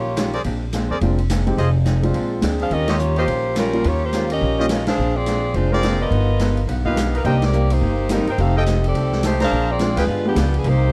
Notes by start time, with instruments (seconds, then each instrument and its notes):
Already playing: upright bass A#1, saxophone section A#3 F4 G4 C#5
0.16 hollow-body jazz guitar D#3 G3 C#4 F4, snare, hi-hat pedal, ride
0.33 trumpet section G#4 A#4 C5 D5, ride
0.44 upright bass A#1, hollow-body jazz guitar A#2 G#3 C4 D4, ride
0.73 hollow-body jazz guitar A#2 G#3 C4 D4, snare, hi-hat pedal, ride
0.90 upright bass F2, trumpet section G#4 A#4 C5 D5
1.01 upright bass F1, hollow-body jazz guitar A#2 G#3 C4 D4, grand piano G#3 C4 D4 F4, ride
1.18 ride
1.30 hollow-body jazz guitar A#2 G#3 C4 D4, snare, hi-hat pedal, ride
1.47 grand piano G#3 C4 D#4 G4, ride
1.57 upright bass F1, hollow-body jazz guitar F3 C4 D#4 G#4, trumpet section F4 G#4 C5 D#5, ride
1.85 hollow-body jazz guitar F3 C4 D#4 G#4, snare, hi-hat pedal, ride
2.02 grand piano G#3 C4 D4 F4, ride
2.13 upright bass A#1, hollow-body jazz guitar A#2 G#3 C4 D4, ride
2.41 upright bass D2, hollow-body jazz guitar A#2 G#3 C4 D4, grand piano G#3 C4 D4 G#4, snare, hi-hat pedal, ride
2.60 saxophone section D4 G#4 C5 F5, ride
2.70 upright bass D#2, hollow-body jazz guitar D#3 G3 C#4 F4, saxophone section C#4 G4 A#4 D#5, ride
2.88 saxophone section A#3 F4 G4 C#5, trumpet section F4 G4 C#5 D#5, snare, ride
2.99 hollow-body jazz guitar D#3 G3 C#4 F4, hi-hat pedal
3.16 saxophone section A#3 F4 G4 C5, trumpet section F4 G4 C#5 D#5, ride
3.27 upright bass A#1, hollow-body jazz guitar D#3 G3 C#4 F4, ride
3.55 hollow-body jazz guitar D#3 G3 C#4 F4, saxophone section G3 C#4 F4 A#4, snare, hi-hat pedal, ride
3.73 grand piano G3 A#3 C#4 F4, ride
3.84 upright bass D#2, hollow-body jazz guitar D#3 G3 C#4 F4, saxophone section A#3 F4 G4 C#5, ride
4.04 saxophone section A#3 F4 G4 C5
4.13 hollow-body jazz guitar D#3 G3 C#4 F4, snare, hi-hat pedal, ride
4.30 saxophone section C#4 G4 A#4 D#5, ride
4.41 upright bass A#1, hollow-body jazz guitar D#3 G3 C#4 F4
4.58 grand piano G3 A#3 C#4 F4, trumpet section F4 G4 C#5 D#5
4.69 hollow-body jazz guitar D#3 G3 C#4 F4, snare, hi-hat pedal, ride
4.86 saxophone section D4 G#4 C5 F5, snare, ride
4.98 upright bass A#1, hollow-body jazz guitar A#2 G#3 C4 D4
5.15 saxophone section C4 F4 G#4 D5
5.26 hollow-body jazz guitar A#2 G#3 C4 D4, snare, hi-hat pedal, ride
5.54 upright bass F1, hollow-body jazz guitar A#2 G#3 C4 D4, saxophone section G#3 D4 F4 C5, ride
5.72 grand piano G#3 C4 D4 F4, saxophone section C4 F4 G#4 D5, trumpet section G#4 A#4 C5 D5
5.83 hollow-body jazz guitar A#2 G#3 C4 D4, snare, hi-hat pedal, ride
6.01 saxophone section B3 F4 A#4 D#5
6.11 upright bass G1, hollow-body jazz guitar G2 F3 B3 D#4, ride
6.39 hollow-body jazz guitar G2 F3 B3 D#4, snare, hi-hat pedal, ride
6.57 ride
6.67 upright bass B1, hollow-body jazz guitar G2 F3 B3 D#4, ride
6.85 grand piano A#3 B3 D#4 F4, trumpet section G4 B4 D#5 F5, kick
6.96 hollow-body jazz guitar G2 F3 B3 D#4, snare, hi-hat pedal, ride
7.14 saxophone section D#4 A#4 B4 F5, ride
7.24 upright bass C2, hollow-body jazz guitar C3 G3 A#3 D#4, grand piano A#3 D4 D#4 G4, saxophone section C4 G4 A#4 D#5, trumpet section A#4 C5 D#5 G5, ride
7.42 saxophone section C4 G4 A#4 D5, snare, ride
7.53 hollow-body jazz guitar C3 G3 A#3 D#4, hi-hat pedal
7.70 saxophone section A#3 D#4 G4 C5, ride
7.81 upright bass G1, hollow-body jazz guitar C3 G3 A#3 D#4
8.09 hollow-body jazz guitar C3 G3 A#3 D#4, saxophone section G3 C4 D#4 A#4, snare, hi-hat pedal, ride
8.27 upright bass G1, saxophone section D#4 A#4 C5 G5, ride
8.37 upright bass F1, hollow-body jazz guitar F3 A3 D#4 G4, grand piano A3 C4 D#4 G4, saxophone section D#4 A4 C5 F5, ride
8.55 saxophone section C4 G4 A4 D#5, trumpet section A4 D#5 F5 G5
8.66 hollow-body jazz guitar F3 A3 D#4 G4, snare, hi-hat pedal, ride
8.84 saxophone section C4 G4 A4 D5, ride
8.94 upright bass C2, hollow-body jazz guitar F3 A3 D#4 G4, ride
9.12 snare
9.23 hollow-body jazz guitar F3 A3 D#4 G4, saxophone section A3 D#4 G4 C5, snare, hi-hat pedal, ride
9.40 saxophone section D4 G#4 C5 F5, trumpet section A#4 C5 D5 A#5, snare, ride
9.51 upright bass A#1, hollow-body jazz guitar A#2 G#3 C4 D4
9.70 saxophone section C4 F4 G#4 D5
9.79 hollow-body jazz guitar A#2 G#3 C4 D4, grand piano G#3 C4 D4 F4, snare, hi-hat pedal, ride
9.96 upright bass D2, saxophone section G#3 D4 F4 B4, trumpet section G#4 B4 F5 G5, snare, ride
10.07 upright bass G1, hollow-body jazz guitar G3 B3 F4 G#4
10.25 saxophone section F3 B3 D4 G4, grand piano G#3 B3 D4 G4
10.35 upright bass C#2, hollow-body jazz guitar G3 B3 F4 G#4, snare, hi-hat pedal, ride
10.54 saxophone section F3 B3 D4 G#4, ride
10.64 upright bass C2, hollow-body jazz guitar C3 G3 A#3 D#4, saxophone section A#3 D#4 G4 C5, ride